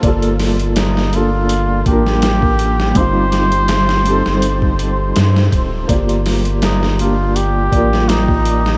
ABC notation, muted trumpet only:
X:1
M:4/4
L:1/8
Q:"Swing 16ths" 1/4=82
K:Gm
V:1 name="Muted trumpet"
z2 E F2 G3 | c6 z2 | z2 E F G2 E2 |]